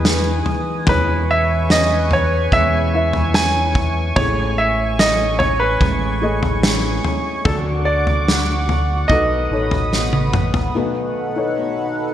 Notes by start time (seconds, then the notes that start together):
Already playing: E2 E3 G#4 B4 D#5 G#5 D#6
0.04 D#3 G#3 B3 G#4, snare
0.46 floor tom
0.87 E2 B2 E3 G#3 C#4 E4 B4 C#5 C#6, kick, floor tom
1.31 E5
1.70 E3 G#3 C#4 E4 D#5, snare
2.10 E3 G#3 C#4 E4 C#5, floor tom
2.52 E2 B2 E3 G#3 C#4 E4 E5, kick, floor tom
2.93 E4 B4 E5
3.13 floor tom
3.33 E3 G#3 C#4 E4 G#5, snare
3.75 kick, floor tom
4.16 A1 A2 E3 G#3 A3 C#4 E4 G#4 C#5, kick, floor tom
4.58 E5
4.98 E3 G#3 C#4 E4 D#5, snare
5.39 G#3 C#4 E4 C#5, floor tom
5.60 B4
5.80 A1 A2 E3 G#3 C#4 E4, kick, floor tom
6.22 A3 G#4 D#5
6.43 floor tom
6.62 E3 G#3 C#4 E4, snare
7.03 G#3 C#4 E4, floor tom
7.44 D2 D3 A3 D4 F#4 A4 D5 F#5 D6, kick, floor tom
7.85 D5
8.07 floor tom
8.27 D3 A3 F#4, snare
8.67 A3 F#4, floor tom
9.08 B1 B2 D#3 A3 B3 D#4 F#4 A4 D#5 B5 D#6, kick, floor tom
9.12 B4
9.50 A1 D#4 A4 C#5
9.71 floor tom
9.91 D#3 A3 B3 F#4, snare
10.13 high tom
10.33 A3 B3 F#4, mid tom
10.54 floor tom
10.74 B1 B2 D#3 A3 B3 D#4 F#4 A4 B4 F#5
11.36 D#4 A4 C#5
11.56 D#3 A3 B3 F#4